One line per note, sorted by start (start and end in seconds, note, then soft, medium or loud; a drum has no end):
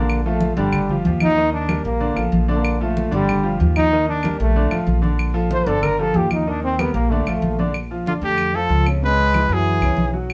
0.00 0.52 A#1 medium
0.00 0.19 D3 medium
0.00 0.23 A#3 medium
0.00 0.19 D4 medium
0.00 0.19 D5 medium
0.09 high conga soft
0.09 claves medium
0.25 0.52 F3 medium
0.25 0.55 A3 medium
0.25 0.52 F4 medium
0.25 0.52 A4 medium
0.25 high conga soft
0.41 high conga loud
0.56 1.02 G1 loud
0.56 0.83 D3 medium
0.56 1.01 G3 medium
0.56 0.84 D4 medium
0.56 0.84 D5 medium
0.56 high conga soft
0.73 high conga soft
0.73 low conga medium
0.73 claves medium
0.89 1.03 F3 medium
0.89 1.03 F4 medium
0.89 1.03 G4 medium
0.89 high conga soft
0.89 low conga medium
1.05 1.79 D#2 loud
1.05 1.32 F3 medium
1.05 1.32 F4 medium
1.05 1.32 G4 medium
1.05 high conga medium
1.20 1.51 D#4 loud
1.20 high conga medium
1.20 claves medium
1.37 1.63 D#3 medium
1.37 1.64 D#4 medium
1.37 1.64 D#5 medium
1.37 high conga soft
1.53 1.83 D4 loud
1.53 high conga soft
1.68 1.95 G3 medium
1.68 1.95 G4 medium
1.68 1.95 A#4 medium
1.68 high conga loud
1.68 claves medium
1.84 2.15 A#1 loud
1.84 2.30 A#3 medium
1.84 high conga soft
2.00 2.14 D3 medium
2.00 2.14 D4 medium
2.00 2.14 D5 medium
2.00 high conga soft
2.16 2.32 A1 medium
2.16 2.42 F3 medium
2.16 2.42 F4 medium
2.16 2.43 A4 medium
2.16 high conga soft
2.16 claves medium
2.32 3.07 A#1 loud
2.32 high conga medium
2.48 2.75 D3 medium
2.48 2.79 A#3 medium
2.48 2.75 D4 medium
2.48 2.75 D5 medium
2.65 high conga soft
2.65 claves medium
2.81 3.07 F3 medium
2.81 3.10 A3 medium
2.81 3.07 F4 medium
2.81 3.07 A4 medium
2.81 high conga soft
2.97 high conga loud
3.11 3.57 G1 medium
3.11 3.38 D3 medium
3.11 3.58 G3 loud
3.11 3.38 D4 loud
3.11 3.38 D5 medium
3.11 high conga soft
3.29 high conga soft
3.29 low conga medium
3.29 claves medium
3.44 3.57 F3 medium
3.44 3.57 F4 medium
3.44 3.57 G4 medium
3.44 high conga soft
3.59 4.34 D#2 medium
3.59 3.86 F3 medium
3.59 3.87 F4 medium
3.59 3.86 G4 medium
3.59 high conga medium
3.76 4.06 D#4 loud
3.76 high conga medium
3.76 claves medium
3.92 4.19 D#3 medium
3.92 4.19 D#4 medium
3.92 4.19 D#5 medium
3.92 high conga soft
4.09 4.38 D4 loud
4.09 high conga soft
4.23 4.50 G3 medium
4.23 4.50 G4 medium
4.23 4.50 A#4 medium
4.23 high conga loud
4.23 claves medium
4.40 4.70 A#1 loud
4.40 4.85 A3 loud
4.40 high conga soft
4.56 4.69 D3 medium
4.56 4.69 D4 medium
4.56 4.69 D5 medium
4.56 high conga soft
4.71 4.86 A1 medium
4.71 4.97 F3 medium
4.71 4.98 F4 medium
4.71 4.98 A4 medium
4.71 high conga soft
4.71 claves medium
4.87 5.61 A#1 medium
4.87 high conga medium
5.02 5.29 D3 medium
5.02 5.29 D4 medium
5.02 5.29 D5 medium
5.02 high conga medium
5.19 high conga soft
5.19 claves medium
5.34 5.61 F3 medium
5.34 5.61 F4 medium
5.34 5.61 A4 medium
5.34 high conga soft
5.51 5.70 C5 loud
5.51 high conga loud
5.66 6.11 G1 loud
5.66 5.93 D3 medium
5.66 5.93 D4 medium
5.66 5.86 A4 loud
5.66 5.93 D5 medium
5.66 high conga soft
5.83 6.01 A#4 loud
5.83 high conga soft
5.83 low conga medium
5.83 claves medium
5.99 6.12 F3 medium
5.99 6.12 F4 medium
5.99 6.13 G4 medium
5.99 6.18 A4 loud
5.99 high conga soft
6.14 6.89 D#2 medium
6.14 6.41 F3 medium
6.14 6.42 F4 medium
6.14 6.41 G4 medium
6.14 6.32 G4 medium
6.14 high conga medium
6.30 6.50 D#4 medium
6.30 high conga medium
6.30 claves medium
6.47 6.73 D#3 medium
6.47 6.63 D4 loud
6.47 6.73 D#4 medium
6.47 6.74 D#5 medium
6.47 high conga soft
6.63 6.81 C4 loud
6.63 high conga soft
6.79 7.05 G3 medium
6.79 6.94 B3 medium
6.79 7.05 G4 medium
6.79 7.06 A#4 medium
6.79 high conga loud
6.79 claves medium
6.94 7.24 A#1 loud
6.94 7.11 A#3 loud
6.94 high conga soft
7.10 7.24 D3 medium
7.10 7.66 A3 medium
7.10 7.24 D4 medium
7.10 7.25 D5 medium
7.10 high conga soft
7.26 7.41 A1 medium
7.26 7.53 F3 medium
7.26 7.54 F4 medium
7.26 7.54 A4 medium
7.26 high conga soft
7.26 claves medium
7.42 8.17 A#1 medium
7.42 high conga medium
7.59 7.72 D3 medium
7.59 7.72 D4 medium
7.59 7.72 D5 medium
7.59 high conga medium
7.74 high conga soft
7.74 claves medium
7.91 8.04 F3 medium
7.91 8.04 F4 medium
7.91 high conga soft
8.07 8.14 D3 medium
8.07 8.20 D4 medium
8.07 8.14 F4 medium
8.07 8.20 D5 medium
8.07 high conga medium
8.21 8.66 F2 medium
8.21 8.58 D3 medium
8.21 8.49 A3 medium
8.21 8.57 G4 loud
8.21 8.49 A4 medium
8.38 high conga soft
8.38 claves medium
8.55 8.81 F3 medium
8.55 8.88 F3 medium
8.55 8.81 F4 medium
8.55 8.87 A4 loud
8.55 high conga soft
8.69 9.44 C#2 medium
8.69 high conga soft
8.86 9.00 C#3 medium
8.86 9.00 C#4 medium
8.86 high conga soft
8.86 claves medium
9.03 9.29 C#3 medium
9.03 9.54 G#3 medium
9.03 9.29 C#4 medium
9.03 9.55 B4 loud
9.03 high conga soft
9.19 high conga soft
9.34 9.48 E3 medium
9.34 9.48 E4 medium
9.34 high conga loud
9.34 claves medium
9.49 9.79 F#2 medium
9.49 10.15 E3 medium
9.49 9.77 F#3 medium
9.49 9.77 F#4 medium
9.49 high conga soft
9.53 10.16 G#4 medium
9.66 high conga soft
9.81 9.96 C2 medium
9.81 10.09 C#3 medium
9.81 10.09 C#4 medium
9.81 high conga soft
9.81 claves medium
9.97 10.33 B1 medium
9.97 high conga medium
10.13 10.33 F#3 medium
10.13 10.33 F#4 medium
10.13 high conga soft
10.30 high conga soft
10.30 claves medium